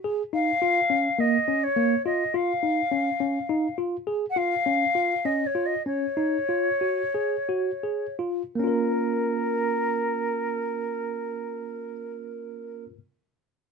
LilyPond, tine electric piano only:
\new Staff \with { instrumentName = "Tine electric piano" } { \time 7/4 \key bes \minor \tempo 4 = 95 aes'8 ees'8 f'8 des'8 bes8 des'8 bes8 f'8 f'8 ees'8 des'8 des'8 ees'8 f'8 | aes'8 f'8 des'8 f'8 des'8 f'8 des'8 ees'8 f'8 ges'8 aes'8 ges'8 aes'8 f'8 | <bes des' f' bes'>1.~ <bes des' f' bes'>4 | }